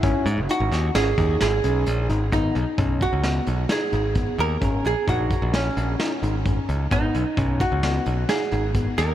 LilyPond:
<<
  \new Staff \with { instrumentName = "Hollow-body jazz guitar" } { \time 5/4 \key gis \minor \tempo 4 = 131 e'8 r8 fis'4 gis'4 gis'4. r8 | dis'4. fis'4. gis'4 r8 ais'8~ | ais'8 gis'8 fis'4 cis'2~ cis'8 r8 | dis'4. fis'4. gis'4 r8 ais'8 | }
  \new Staff \with { instrumentName = "Tine electric piano" } { \time 5/4 \key gis \minor cis'4 dis'4 cis'8 dis'4 cis'4 dis'8 | b4 cis'4 b4 dis'8 dis'8 b4 | cis'4 dis'4 cis'4 dis'8 dis'8 cis'4 | b4 cis'4 b4 dis'8 dis'8 b4 | }
  \new Staff \with { instrumentName = "Picked electric bass" } { \clef bass \time 5/4 \key gis \minor gis,,16 r16 gis,16 fis,,16 r16 gis,,16 dis,8 gis,,8 dis,8 gis,,8 b,,8 ais,,8 gis,,8 | gis,,8 b,,16 r16 b,,8. cis,8. b,,8 r8 gis,,4 dis,8 | gis,,8 ais,,16 r16 ais,,8. ais,,8. ais,,8 r8 gis,,4 cis,8 | gis,,8 b,,16 r16 b,,8. cis,8. b,,8 r8 gis,,4 dis,8 | }
  \new DrumStaff \with { instrumentName = "Drums" } \drummode { \time 5/4 <hh bd>8 hh8 hh8 <hh sn>8 <hh sn>8 <hh bd>8 <hh sn>8 hh8 hh8 hh8 | <hh bd>8 hh8 <hh bd>8 <hh bd>8 <hh sn>8 hh8 <hh sn>8 hh8 <hh bd>8 hh8 | <hh bd>8 hh8 <hh bd>8 <hh bd>8 <hh sn>8 hh8 <hh sn>8 hh8 <hh bd>8 hh8 | <hh bd>8 hh8 <hh bd>8 <hh bd>8 <hh sn>8 hh8 <hh sn>8 hh8 <hh bd>8 <hh sn>8 | }
>>